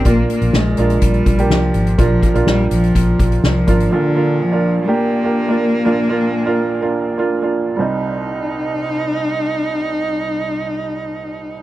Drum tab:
HH |x-xx--xxxxxx--xx|x-xx--xxx-xx--xx|----------------|----------------|
SD |----o-------o---|----o-------o---|----------------|----------------|
BD |o-------o-o-----|o-o-----o-o---o-|----------------|----------------|

HH |----------------|----------------|
SD |----------------|----------------|
BD |----------------|----------------|